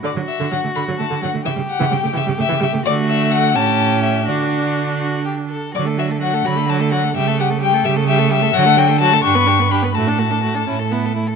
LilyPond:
<<
  \new Staff \with { instrumentName = "Violin" } { \time 6/8 \key d \major \tempo 4. = 85 d''8 e''8 fis''8 b''8 a''8 fis''8 | e''8 fis''8 g''8 e''8 e''8 e''8 | d''8 e''8 fis''8 a''4 e''8 | d''4. r4. |
d''8 e''8 fis''8 b''8 a''8 fis''8 | e''8 fis''8 g''8 e''8 e''8 e''8 | fis''8 g''8 a''8 cis'''4 b''8 | a''2~ a''8 r8 | }
  \new Staff \with { instrumentName = "Violin" } { \time 6/8 \key d \major fis'2. | g'2. | fis'4. g'4. | fis'4. fis'8 g'8 a'8 |
fis'16 a'16 fis'16 a'16 fis'16 a'16 fis'16 a'16 fis'16 a'16 fis'16 a'16 | g'16 a'16 g'16 a'16 g'16 a'16 g'16 a'16 g'16 a'16 g'16 a'16 | fis'16 a'16 fis'16 a'16 fis'16 a'16 g'16 b'16 g'16 b'16 g'16 b'16 | fis'16 a'16 fis'16 a'16 fis'16 a'16 e'16 a'16 e'16 a'16 e'16 a'16 | }
  \new Staff \with { instrumentName = "Viola" } { \time 6/8 \key d \major d16 fis16 r16 d16 fis16 a16 d16 fis16 a16 d16 fis16 a16 | e16 g16 r16 e16 g16 a16 e16 g16 a16 e16 g16 a16 | a4. cis'4. | d'2~ d'8 r8 |
fis16 a16 fis16 a16 fis16 a16 fis16 a16 fis16 a16 fis16 a16 | g16 a16 g16 a16 g16 a16 g16 a16 g16 a16 g16 a16 | fis16 a16 fis16 a16 fis16 a16 d'16 b16 d'16 b16 d'16 b16 | a16 d'16 a16 d'16 a16 d'16 cis'8 b8 a8 | }
  \new Staff \with { instrumentName = "Cello" } { \clef bass \time 6/8 \key d \major d16 d16 r16 d16 d16 d16 d16 d16 d16 d16 d16 d16 | cis16 cis16 r16 cis16 cis16 cis16 cis16 cis16 cis16 cis16 cis16 cis16 | d4. a,4. | d2~ d8 r8 |
d4~ d16 r16 d4~ d16 r16 | cis4~ cis16 r16 cis4~ cis16 r16 | d4~ d16 r16 g,4~ g,16 r16 | a,4~ a,16 r16 a,4~ a,16 r16 | }
>>